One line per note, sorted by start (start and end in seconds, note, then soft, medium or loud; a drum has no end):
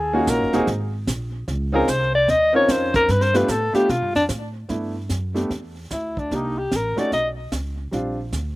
0.00 0.26 D#2 medium
0.00 0.31 G#4 medium
0.13 0.51 A#3 medium
0.13 0.51 C#4 medium
0.13 0.51 D#4 medium
0.13 0.51 F4 medium
0.13 0.51 F#4 medium
0.27 0.40 A#1 medium
0.27 0.69 A#4 medium
0.27 kick soft
0.27 snare medium
0.27 hi-hat pedal medium
0.40 0.53 F#1 medium
0.53 0.66 D#1 medium
0.53 0.66 A#3 medium
0.53 0.66 C4 medium
0.53 0.66 D#4 medium
0.53 0.66 F#4 medium
0.53 0.67 G#4 medium
0.53 snare soft
0.67 1.06 G#1 medium
0.67 brush sweep soft
0.67 kick soft
0.67 snare soft
1.07 1.46 A#1 medium
1.07 kick soft
1.07 snare medium
1.07 hi-hat pedal medium
1.48 1.87 C#2 medium
1.48 brush sweep medium
1.48 kick soft
1.48 snare soft
1.72 1.86 C4 medium
1.72 1.86 C#4 medium
1.72 1.86 D#4 medium
1.72 1.86 F4 medium
1.72 1.87 G#4 medium
1.72 1.91 A#4 medium
1.88 2.27 C2 medium
1.88 2.14 C5 medium
1.88 kick soft
1.88 snare medium
1.88 hi-hat pedal medium
2.15 2.31 D5 medium
2.28 2.67 D#2 medium
2.28 2.55 D#5 loud
2.28 brush sweep soft
2.28 kick soft
2.28 snare soft
2.53 3.05 C4 medium
2.53 3.06 C#4 medium
2.53 3.06 D#4 medium
2.53 3.06 F4 medium
2.53 3.06 A#4 medium
2.53 2.72 C#5 medium
2.68 3.07 F2 medium
2.68 2.95 C5 medium
2.68 kick soft
2.68 snare medium
2.68 hi-hat pedal medium
2.94 3.12 A#4 loud
2.94 kick medium
2.94 snare soft
3.08 3.48 G2 medium
3.08 3.24 B4 medium
3.08 brush sweep soft
3.08 kick soft
3.08 snare soft
3.21 3.38 C5 loud
3.21 snare soft
3.33 3.47 A3 medium
3.33 3.47 B3 medium
3.33 3.47 D4 medium
3.33 3.48 F4 medium
3.33 3.48 G4 medium
3.33 3.51 B4 medium
3.33 snare soft
3.48 3.73 A2 medium
3.48 3.74 A4 medium
3.48 kick soft
3.48 snare medium
3.48 hi-hat pedal medium
3.73 3.87 A3 medium
3.73 3.87 B3 medium
3.73 3.87 D4 medium
3.73 3.87 F4 medium
3.73 3.92 G4 medium
3.73 3.88 G4 medium
3.73 muted upright bass stroke soft
3.73 snare soft
3.89 4.02 B2 medium
3.89 4.15 F4 medium
3.89 brush sweep medium
3.89 kick soft
3.89 snare soft
4.02 4.15 G2 medium
4.15 4.28 F2 medium
4.15 4.24 D4 medium
4.15 snare soft
4.29 4.68 A2 medium
4.29 kick soft
4.29 snare medium
4.29 hi-hat pedal medium
4.69 5.09 G2 medium
4.69 4.92 A3 soft
4.69 4.93 B3 soft
4.69 4.93 D4 soft
4.69 4.93 E4 soft
4.69 brush sweep soft
4.69 kick soft
4.69 snare soft
5.09 5.49 F#2 medium
5.09 kick soft
5.09 snare soft
5.09 hi-hat pedal soft
5.34 5.48 A3 soft
5.34 5.48 B3 soft
5.34 5.49 D4 soft
5.34 5.49 G4 medium
5.34 snare soft
5.50 5.89 E2 medium
5.50 brush sweep soft
5.50 kick soft
5.50 snare soft
5.91 6.30 D2 medium
5.91 6.20 E4 medium
5.91 kick soft
5.91 snare soft
5.91 hi-hat pedal soft
6.17 6.37 D4 medium
6.17 kick soft
6.31 6.70 C2 medium
6.31 6.55 A#3 soft
6.31 6.55 D4 soft
6.31 6.55 D#4 soft
6.31 6.55 G4 soft
6.31 brush sweep soft
6.31 kick soft
6.31 snare soft
6.35 6.60 D#4 medium
6.58 6.77 G4 medium
6.71 6.96 A1 medium
6.71 kick soft
6.71 snare soft
6.71 hi-hat pedal soft
6.76 7.00 A#4 medium
6.96 7.10 A3 medium
6.96 7.10 C#4 soft
6.96 7.10 D#4 soft
6.96 7.10 F#4 medium
6.96 7.12 D5 medium
6.96 muted upright bass stroke soft
6.96 snare soft
7.12 7.51 B1 medium
7.12 7.28 D#5 medium
7.12 brush sweep soft
7.12 kick soft
7.12 snare soft
7.52 7.91 C#2 medium
7.52 kick soft
7.52 snare soft
7.52 hi-hat pedal soft
7.91 8.31 A#1 medium
7.91 8.15 G3 soft
7.91 8.16 C4 soft
7.91 8.16 D4 soft
7.91 8.16 F4 medium
7.91 brush sweep soft
7.91 kick soft
7.91 snare soft
8.32 8.56 D2 medium
8.32 kick soft
8.32 snare soft
8.32 hi-hat pedal soft